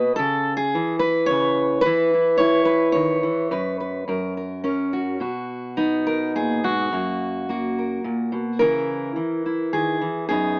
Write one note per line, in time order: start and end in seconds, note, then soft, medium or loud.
0.00 0.18 B2 medium
0.00 0.16 B3 medium
0.00 0.16 F#4 medium
0.00 0.15 B4 loud
0.00 0.17 D#5 medium
0.16 0.74 C#3 medium
0.16 0.56 A4 loud
0.57 0.99 G#4 medium
0.75 1.84 E3 medium
0.99 1.80 B4 medium
1.26 1.82 C#3 medium
1.26 1.83 C#5 loud
1.81 2.64 B4 loud
1.86 3.22 E3 medium
1.86 2.13 E4 medium
2.14 2.39 E4 soft
2.38 3.47 E4 medium
2.38 2.91 C#5 loud
2.65 3.49 B4 medium
2.92 3.23 D#3 medium
2.92 5.19 C#5 medium
3.23 3.51 E3 medium
3.51 4.06 F#2 medium
3.51 3.79 B4 medium
3.80 4.04 B4 soft
4.08 5.21 F#2 medium
4.08 4.36 A#4 soft
4.37 4.63 A#4 soft
4.64 5.18 C#4 medium
4.64 5.18 A#4 soft
4.93 5.18 F#4 soft
5.20 6.92 B2 medium
5.20 6.63 F#4 soft
5.77 6.89 B3 soft
5.77 6.64 D#4 medium
6.07 6.35 A#4 medium
6.35 6.63 A#2 soft
6.35 6.93 G#4 medium
6.64 6.92 G#2 soft
6.64 7.49 F#4 medium
6.92 8.04 F#2 medium
6.92 7.48 A#3 soft
7.49 8.58 A#3 soft
7.49 8.58 F#4 soft
7.79 8.58 A#4 soft
8.04 8.33 A#2 soft
8.32 8.61 B2 soft
8.59 9.17 C#3 medium
8.59 9.15 E3 soft
8.59 9.45 E4 soft
8.59 9.72 A#4 medium
9.16 10.00 E3 soft
9.46 10.27 E4 soft
9.73 10.01 D#3 medium
9.73 10.27 G#4 medium
10.01 10.30 E3 soft
10.29 10.60 F#2 medium
10.29 10.60 B3 soft
10.29 10.60 D#4 soft
10.29 10.60 G#4 medium